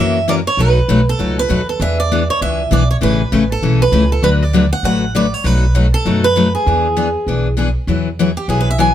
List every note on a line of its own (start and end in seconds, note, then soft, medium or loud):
0.00 0.46 F#2 medium
0.00 0.17 E3 medium
0.00 0.18 A#3 medium
0.00 0.18 C#4 medium
0.00 0.18 F#4 medium
0.00 0.18 A#4 medium
0.00 0.27 E5 medium
0.28 0.39 E3 medium
0.28 0.39 A#3 medium
0.28 0.39 C#4 medium
0.28 0.39 F#4 medium
0.28 0.39 A#4 medium
0.28 0.34 D5 medium
0.47 0.59 C#5 medium
0.57 0.82 B1 medium
0.57 0.78 B2 medium
0.57 0.78 F#3 medium
0.57 0.78 A3 medium
0.57 0.78 D#4 medium
0.57 0.79 F#4 medium
0.57 1.04 B4 medium
0.88 1.14 B1 medium
0.88 0.99 B2 medium
0.88 0.99 F#3 medium
0.88 1.00 A3 medium
0.88 1.00 D#4 medium
0.88 1.00 F#4 medium
1.09 1.36 A4 medium
1.19 1.45 C#2 medium
1.19 1.38 B2 medium
1.19 1.39 F#3 medium
1.19 1.39 A3 medium
1.19 1.39 D#4 medium
1.19 1.39 F#4 medium
1.39 1.66 B4 medium
1.49 1.75 D#2 medium
1.49 1.60 B2 medium
1.49 1.60 F#3 medium
1.49 1.60 A3 medium
1.49 1.60 D#4 medium
1.49 1.61 F#4 medium
1.69 1.80 A4 medium
1.80 2.28 E2 medium
1.80 1.99 E3 medium
1.80 2.00 B3 medium
1.80 2.00 D4 medium
1.80 2.00 G#4 medium
1.80 1.98 E5 medium
2.00 2.30 D5 medium
2.12 2.22 E3 medium
2.12 2.22 B3 medium
2.12 2.22 D4 medium
2.12 2.22 G#4 medium
2.30 2.42 C#5 medium
2.41 2.67 C#2 medium
2.41 2.61 E3 medium
2.41 2.61 B3 medium
2.41 2.61 D4 medium
2.41 2.61 G#4 medium
2.41 2.70 E5 medium
2.71 2.97 B1 medium
2.71 2.82 E3 medium
2.71 2.82 B3 medium
2.71 2.82 D4 medium
2.71 2.82 G#4 medium
2.71 2.90 D5 medium
2.91 2.96 C#5 medium
3.01 3.26 A1 medium
3.01 3.21 C#3 medium
3.01 3.21 E3 medium
3.01 3.21 A3 medium
3.01 3.21 C#4 medium
3.01 3.21 G#4 medium
3.01 3.47 B4 medium
3.32 3.58 A1 medium
3.32 3.43 C#3 medium
3.32 3.43 E3 medium
3.32 3.43 A3 medium
3.32 3.43 C#4 medium
3.32 3.43 G#4 medium
3.52 3.82 A4 medium
3.62 3.88 B1 medium
3.62 3.82 C#3 medium
3.62 3.82 E3 medium
3.62 3.82 A3 medium
3.62 3.82 C#4 medium
3.62 3.82 G#4 medium
3.82 4.09 B4 medium
3.92 4.18 C#2 medium
3.92 4.03 C#3 medium
3.92 4.03 E3 medium
3.92 4.03 A3 medium
3.92 4.03 C#4 medium
3.92 4.04 G#4 medium
4.12 4.23 A4 medium
4.22 4.71 D2 medium
4.22 4.42 D3 medium
4.22 4.42 F#3 medium
4.22 4.42 A3 medium
4.22 4.43 D4 medium
4.22 4.43 F#4 medium
4.22 4.29 B4 medium
4.22 4.43 B4 medium
4.43 4.72 D5 medium
4.53 4.64 D3 medium
4.53 4.64 F#3 medium
4.53 4.64 A3 medium
4.53 4.65 D4 medium
4.53 4.64 F#4 medium
4.53 4.65 B4 medium
4.73 4.83 F#5 medium
4.83 5.32 A1 medium
4.83 5.03 D3 medium
4.83 5.04 F#3 medium
4.83 5.04 A3 medium
4.83 5.04 D4 medium
4.83 5.04 F#4 medium
4.83 5.04 B4 medium
4.83 5.13 F#5 medium
5.15 5.25 D3 medium
5.15 5.25 F#3 medium
5.15 5.25 A3 medium
5.15 5.25 D4 medium
5.15 5.26 F#4 medium
5.15 5.26 B4 medium
5.15 5.34 D5 medium
5.34 5.46 C#5 medium
5.44 5.93 B1 medium
5.44 5.64 B2 medium
5.44 5.64 F#3 medium
5.44 5.64 A3 medium
5.44 5.64 D#4 medium
5.44 5.65 F#4 medium
5.44 5.76 B4 medium
5.75 5.85 B2 medium
5.75 5.85 F#3 medium
5.75 5.86 A3 medium
5.75 5.86 D#4 medium
5.75 5.86 F#4 medium
5.94 6.25 A4 medium
6.05 6.54 F#2 medium
6.05 6.25 B2 medium
6.05 6.25 F#3 medium
6.05 6.25 A3 medium
6.05 6.25 D#4 medium
6.05 6.26 F#4 medium
6.24 6.52 B4 loud
6.36 6.46 B2 medium
6.36 6.47 F#3 medium
6.36 6.47 A3 medium
6.36 6.47 D#4 medium
6.36 6.47 F#4 medium
6.55 7.54 G#4 medium
6.66 7.15 E2 medium
6.66 6.86 E3 medium
6.66 6.86 B3 medium
6.66 6.86 D4 medium
6.66 6.87 G#4 medium
6.97 7.07 E3 medium
6.97 7.07 B3 medium
6.97 7.08 D4 medium
6.97 7.08 G#4 medium
7.27 7.75 B1 medium
7.27 7.47 E3 medium
7.27 7.47 B3 medium
7.27 7.47 D4 medium
7.27 7.47 G#4 medium
7.57 7.68 E3 medium
7.57 7.68 B3 medium
7.57 7.68 D4 medium
7.57 7.68 G#4 medium
7.87 8.36 E2 medium
7.87 8.07 E3 medium
7.87 8.08 F#3 medium
7.87 8.08 B3 medium
7.87 8.08 E4 medium
7.87 8.08 G#4 medium
8.19 8.29 E3 medium
8.19 8.29 F#3 medium
8.19 8.30 B3 medium
8.19 8.30 E4 medium
8.19 8.30 G#4 medium
8.37 8.48 G4 medium
8.48 8.94 B1 medium
8.48 8.68 E3 medium
8.48 8.68 F#3 medium
8.48 8.68 B3 medium
8.48 8.68 E4 medium
8.48 8.68 G#4 medium
8.48 8.59 G#4 medium
8.61 8.69 B4 medium
8.70 8.79 E5 medium
8.78 8.89 E3 medium
8.78 8.89 F#3 medium
8.78 8.90 B3 medium
8.78 8.90 E4 medium
8.78 8.90 G#4 medium
8.78 8.94 G#5 medium